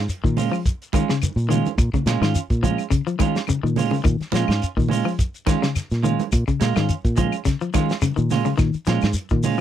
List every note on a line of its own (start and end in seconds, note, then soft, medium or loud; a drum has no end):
0.09 closed hi-hat medium
0.09 shekere medium
0.24 0.49 A#2 medium
0.24 0.41 D#3 medium
0.24 kick medium
0.24 shekere soft
0.37 0.55 G#3 medium
0.37 0.55 C#4 medium
0.37 0.55 F4 medium
0.37 open hi-hat medium
0.37 high conga medium
0.37 low conga medium
0.37 shekere medium
0.52 0.69 F3 medium
0.52 claves medium
0.52 shekere soft
0.66 kick medium
0.66 closed hi-hat medium
0.66 shekere medium
0.82 closed hi-hat soft
0.82 shekere soft
0.93 1.03 D#3 medium
0.93 1.11 G#3 medium
0.93 1.11 C#4 medium
0.93 1.12 F4 medium
0.93 kick medium
0.93 closed hi-hat soft
0.93 high conga medium
0.93 claves medium
0.93 shekere medium
1.09 1.27 C#3 medium
1.09 snare medium
1.09 shekere soft
1.22 closed hi-hat medium
1.22 high conga medium
1.22 claves medium
1.22 shekere medium
1.36 1.62 A#2 medium
1.36 closed hi-hat soft
1.36 shekere soft
1.49 1.66 D#3 medium
1.49 1.68 G#3 medium
1.49 1.68 C#4 medium
1.49 1.68 F4 medium
1.49 closed hi-hat soft
1.49 high conga medium
1.49 low conga medium
1.49 shekere medium
1.66 closed hi-hat soft
1.66 high conga medium
1.66 shekere soft
1.78 1.92 A#2 medium
1.78 kick medium
1.78 closed hi-hat medium
1.78 claves medium
1.78 shekere medium
1.93 2.11 C#3 medium
1.93 muted fingered electric bass stroke soft
1.93 kick medium
1.93 closed hi-hat soft
1.93 low conga medium
1.93 shekere soft
2.06 2.20 A#2 medium
2.06 2.22 G#3 medium
2.06 2.22 C#4 medium
2.06 2.21 F4 medium
2.06 snare medium
2.06 closed hi-hat medium
2.06 high conga medium
2.06 shekere medium
2.21 2.33 G#2 medium
2.21 2.39 D#3 medium
2.21 2.39 C#4 soft
2.21 2.38 F4 medium
2.21 snare medium
2.21 claves medium
2.21 shekere soft
2.35 closed hi-hat medium
2.35 shekere medium
2.50 2.75 A#2 medium
2.50 kick medium
2.50 closed hi-hat soft
2.50 shekere soft
2.63 2.80 F3 medium
2.63 2.81 G#3 medium
2.63 2.81 C#4 medium
2.63 2.82 F4 medium
2.63 kick medium
2.63 closed hi-hat soft
2.63 high conga medium
2.63 low conga medium
2.63 shekere medium
2.78 closed hi-hat soft
2.78 claves medium
2.78 shekere soft
2.90 3.00 C#3 medium
2.90 kick medium
2.90 closed hi-hat medium
2.90 shekere medium
3.07 3.15 F3 medium
3.07 closed hi-hat soft
3.07 shekere soft
3.19 3.36 D#3 medium
3.19 3.38 G#3 medium
3.19 3.38 C#4 medium
3.19 3.38 F4 medium
3.19 kick medium
3.19 closed hi-hat soft
3.19 high conga medium
3.19 claves medium
3.19 shekere medium
3.35 snare medium
3.35 closed hi-hat soft
3.35 shekere soft
3.47 3.58 C#3 medium
3.47 closed hi-hat medium
3.47 high conga medium
3.47 claves medium
3.47 shekere medium
3.63 3.89 A#2 medium
3.63 3.81 D#3 medium
3.63 shekere soft
3.76 3.95 G#3 medium
3.76 3.95 C#4 medium
3.76 3.95 F4 medium
3.76 open hi-hat medium
3.76 high conga medium
3.76 low conga medium
3.76 shekere medium
3.91 3.99 C#3 medium
3.91 high conga medium
3.91 shekere soft
4.04 4.19 A#2 loud
4.04 4.21 D#3 medium
4.04 kick medium
4.04 closed hi-hat medium
4.04 claves medium
4.04 shekere medium
4.20 muted fingered electric bass stroke soft
4.20 snare soft
4.20 closed hi-hat soft
4.20 shekere soft
4.32 4.47 A#2 medium
4.32 4.50 F3 medium
4.32 4.49 G#3 medium
4.32 4.49 C#4 medium
4.32 4.48 F4 medium
4.32 snare medium
4.32 closed hi-hat soft
4.32 high conga medium
4.32 shekere medium
4.48 4.60 G#2 medium
4.48 4.66 C#4 soft
4.48 4.65 F4 medium
4.48 snare medium
4.48 closed hi-hat soft
4.48 claves medium
4.48 shekere soft
4.62 closed hi-hat medium
4.62 shekere medium
4.77 5.02 A#2 medium
4.77 4.94 D#3 medium
4.77 kick medium
4.77 shekere soft
4.89 5.08 G#3 medium
4.89 5.08 C#4 medium
4.89 5.08 F4 medium
4.89 open hi-hat medium
4.89 high conga medium
4.89 low conga medium
4.89 shekere medium
5.05 5.22 F3 medium
5.05 claves medium
5.05 shekere soft
5.19 kick medium
5.19 closed hi-hat medium
5.19 shekere medium
5.34 closed hi-hat soft
5.34 shekere soft
5.46 5.56 D#3 medium
5.46 5.64 G#3 medium
5.46 5.65 C#4 medium
5.46 5.65 F4 medium
5.46 kick medium
5.46 snare soft
5.46 closed hi-hat soft
5.46 high conga medium
5.46 claves medium
5.46 shekere medium
5.62 5.79 C#3 medium
5.62 snare medium
5.62 shekere soft
5.76 snare soft
5.76 closed hi-hat medium
5.76 claves medium
5.76 shekere medium
5.91 6.16 A#2 medium
5.91 snare soft
5.91 closed hi-hat soft
5.91 shekere soft
6.03 6.21 D#3 medium
6.03 6.21 G#3 medium
6.03 6.21 C#4 medium
6.03 6.21 F4 medium
6.03 closed hi-hat medium
6.03 low conga medium
6.03 shekere medium
6.19 closed hi-hat soft
6.19 high conga medium
6.19 shekere soft
6.32 6.46 A#2 loud
6.32 kick medium
6.32 closed hi-hat medium
6.32 claves medium
6.32 shekere medium
6.48 6.65 C#3 medium
6.48 muted fingered electric bass stroke soft
6.48 kick medium
6.48 closed hi-hat soft
6.48 shekere soft
6.60 6.74 A#2 medium
6.60 6.75 G#3 medium
6.60 6.74 F4 medium
6.60 muted clean electric guitar stroke medium
6.60 snare medium
6.60 closed hi-hat medium
6.60 high conga medium
6.60 shekere medium
6.75 6.88 G#2 medium
6.75 6.93 D#3 medium
6.75 6.92 C#4 soft
6.75 6.91 F4 soft
6.75 snare medium
6.75 high conga medium
6.75 claves medium
6.75 shekere soft
6.89 closed hi-hat medium
6.89 shekere medium
7.05 7.29 A#2 medium
7.05 kick medium
7.05 closed hi-hat soft
7.05 shekere soft
7.16 7.35 F3 medium
7.16 7.35 G#3 medium
7.16 7.35 C#4 medium
7.16 7.35 F4 medium
7.16 kick medium
7.16 closed hi-hat medium
7.16 high conga medium
7.16 low conga medium
7.16 shekere medium
7.32 closed hi-hat soft
7.32 claves medium
7.32 shekere soft
7.45 7.54 C#3 medium
7.45 kick medium
7.45 snare soft
7.45 closed hi-hat medium
7.45 shekere medium
7.61 7.69 F3 medium
7.61 closed hi-hat soft
7.61 shekere soft
7.74 7.91 D#3 medium
7.74 7.92 G#3 medium
7.74 7.92 C#4 medium
7.74 7.92 F4 medium
7.74 kick medium
7.74 closed hi-hat soft
7.74 high conga medium
7.74 claves medium
7.74 shekere medium
7.89 snare medium
7.89 closed hi-hat soft
7.89 shekere soft
8.02 8.11 C#3 medium
8.02 closed hi-hat medium
8.02 high conga medium
8.02 claves medium
8.02 shekere medium
8.16 8.43 A#2 medium
8.16 8.34 D#3 medium
8.16 shekere soft
8.30 8.48 G#3 medium
8.30 8.49 C#4 medium
8.30 8.49 F4 medium
8.30 snare soft
8.30 open hi-hat medium
8.30 high conga medium
8.30 low conga medium
8.30 shekere medium
8.45 8.53 C#3 medium
8.45 high conga medium
8.45 shekere soft
8.58 8.72 A#2 medium
8.58 8.75 D#3 medium
8.58 kick medium
8.58 snare soft
8.58 closed hi-hat medium
8.58 claves medium
8.58 shekere medium
8.73 muted fingered electric bass stroke soft
8.73 closed hi-hat soft
8.73 shekere soft
8.86 9.01 A#2 medium
8.86 9.04 F3 medium
8.86 9.05 G#3 medium
8.86 9.05 C#4 medium
8.86 9.06 F4 medium
8.86 snare medium
8.86 closed hi-hat soft
8.86 high conga medium
8.86 shekere medium
9.01 9.14 G#2 medium
9.01 snare medium
9.01 closed hi-hat soft
9.01 high conga medium
9.01 claves medium
9.01 shekere soft
9.14 closed hi-hat medium
9.14 shekere medium
9.29 9.56 A#2 medium
9.29 9.48 D#3 medium
9.29 kick medium
9.29 shekere soft
9.43 9.61 G#3 medium
9.43 9.61 C#4 medium
9.43 9.61 F4 medium
9.43 open hi-hat medium
9.43 high conga medium
9.43 low conga medium
9.43 shekere medium